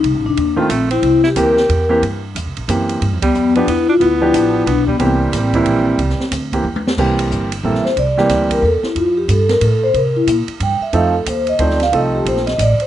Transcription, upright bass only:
X:1
M:3/4
L:1/8
Q:"Swing" 1/4=182
K:Cmix
V:1 name="Upright bass" clef=bass
(3C,, A,,, F,,, _E,,2 B,,,2 | C,,2 D,,2 E,,2 | G,,2 (3E,, C,, B,,, ^F,,2 | (3G,, F,, D,, F,,2 E,,2 |
D,,2 A,,,2 =B,,,2 | C,,2 A,,,2 B,,,2 | C,, z D,,2 E,,2 | C,,2 G,,,2 B,,, z |
C,,2 D,,2 E,, z | F,,2 G,,2 A,,2 | C,2 B,, z G,, z | F,,2 _E,,2 D,,2 |
C,,2 B,,,2 A,,, z |]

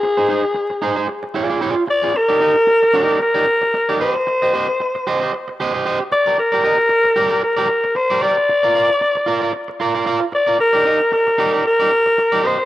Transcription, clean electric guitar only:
X:1
M:4/4
L:1/16
Q:"Swing 16ths" 1/4=114
K:Fphr
V:1 name="Clean electric guitar"
z [EAc] [EAc] z3 [EAc] [EAc] z2 [FA=d] [FAd] [FAd]2 z [FAd] | [K:Eb] z [EGd] [EGe] z3 [EGd] [EGd] z [EGd] z3 [EGd] [Gce] z | z [Gce] [Gce] z3 [Gce] [Gce] z2 [Gce] [Gce] [Gce] z2 [GBd] | z [GBd] [GBe] z3 [GBd] [GBd] z [GBd] z3 [GBd] [GBd] z |
z [FBd] [FBd] z3 [FBd] [FBd] z2 [FBd] [FBd] [FBd] z2 [FBd] | z [EGd] [EGe] z3 [EGd] [EGd] z [EGd] z3 [EGd] [Gce] z |]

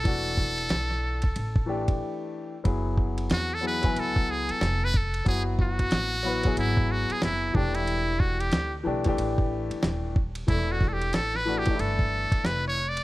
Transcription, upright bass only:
X:1
M:4/4
L:1/16
Q:"Swing 16ths" 1/4=92
K:F#phr
V:1 name="Upright bass" clef=bass
E,,,4 B,,,4 A,,,4 z4 | F,,,4 E,,4 C,,3 z ^E,,,4 | F,,,4 A,,,4 ^G,,,3 z F,,,2 E,,,2- | E,,,4 D,,2 B,,,2 A,,,3 z ^D,,,4 |
E,,,4 A,,,4 G,,,3 z ^E,,,4 |]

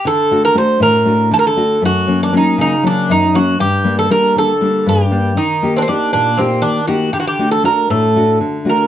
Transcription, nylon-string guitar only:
X:1
M:7/8
L:1/8
Q:1/4=118
K:none
V:1 name="Nylon-string guitar"
D, [A,D^F] [A,DF] A,, [A,DF] D, [A,DF] | ^F,, [^F,^A,^C] [F,A,C] ^C, [F,A,C] F,, [F,A,C] | G,, [G,_B,D] [G,B,D] D, [G,B,D] G,, [G,B,D] | _E, [_B,_EG] [B,EG] _B,, [B,EG] E, [B,EG] |
D, [A,D^F] [A,DF] A,, [A,DF] D, [A,DF] |]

